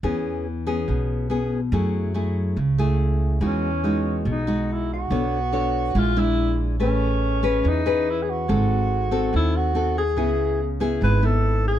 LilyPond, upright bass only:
\new Staff \with { instrumentName = "Upright bass" } { \clef bass \time 4/4 \key e \major \tempo 4 = 142 e,2 b,,2 | fis,2 cis,2 | e,2 b,,2 | b,,2 ais,,2 |
a,,2 e,2 | gis,,2 dis,2 | cis,2 gis,,2 | }